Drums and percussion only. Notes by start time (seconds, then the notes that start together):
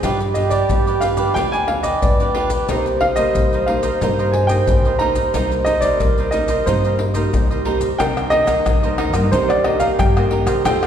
0.03 pandeiro, maracas, surdo
0.20 pandeiro, maracas
0.35 pandeiro, maracas
0.51 pandeiro, maracas, surdo
0.70 pandeiro, maracas, surdo
0.87 pandeiro, maracas
1.01 pandeiro, maracas
1.17 pandeiro, maracas, surdo
1.36 pandeiro, maracas, surdo
1.53 pandeiro, maracas
1.68 pandeiro
1.84 pandeiro, maracas, surdo
2.02 pandeiro, maracas, surdo
2.20 pandeiro, maracas
2.35 pandeiro
2.50 pandeiro, maracas, surdo
2.69 pandeiro, maracas, surdo
2.86 pandeiro, maracas
3.01 pandeiro, surdo
3.16 pandeiro, maracas, surdo
3.35 pandeiro, maracas, surdo
3.53 pandeiro, maracas
3.68 pandeiro
3.83 pandeiro, maracas, surdo
4.02 pandeiro, maracas, surdo
4.19 pandeiro, maracas
4.34 pandeiro
4.49 pandeiro, maracas, surdo
4.68 pandeiro, maracas, surdo
4.85 pandeiro, maracas
5.00 pandeiro
5.15 pandeiro, maracas, surdo
5.34 pandeiro, maracas, surdo
5.52 pandeiro, maracas
5.66 pandeiro, maracas, surdo
5.82 pandeiro, maracas, surdo
6.00 pandeiro, maracas, surdo
6.18 pandeiro, maracas
6.32 pandeiro, maracas
6.48 pandeiro, maracas, surdo
6.67 pandeiro, maracas, surdo
6.85 pandeiro, maracas
6.99 pandeiro
7.15 pandeiro, maracas, surdo
7.34 pandeiro, maracas, surdo
7.51 pandeiro, maracas
7.65 pandeiro
7.81 pandeiro, maracas, surdo
8.00 pandeiro, tamborim, maracas, surdo
8.17 pandeiro, tamborim, maracas
8.32 pandeiro
8.47 pandeiro, tamborim, maracas, surdo
8.66 pandeiro, tamborim, maracas, surdo
8.83 pandeiro, maracas
8.98 pandeiro, tamborim
9.14 pandeiro, tamborim, maracas, surdo
9.33 pandeiro, maracas, surdo
9.50 pandeiro, tamborim, maracas
9.64 pandeiro, tamborim
9.80 pandeiro, maracas, surdo
9.99 pandeiro, tamborim, maracas, surdo
10.17 pandeiro, tamborim, maracas
10.31 pandeiro
10.47 pandeiro, tamborim, maracas, surdo
10.65 pandeiro, tamborim, maracas, surdo
10.83 pandeiro, tamborim, maracas